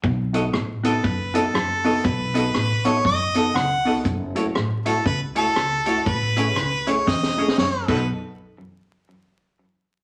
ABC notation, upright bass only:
X:1
M:4/4
L:1/8
Q:"Swing" 1/4=119
K:Bmix
V:1 name="Upright bass" clef=bass
B,,,2 A,,,2 F,,,2 F,,,2 | B,,,2 A,,,2 F,,,2 C,,2 | F,,,2 A,,,2 C,,2 C,,2 | A,,,2 C,,2 E,,2 F,,, B,,, |
z8 |]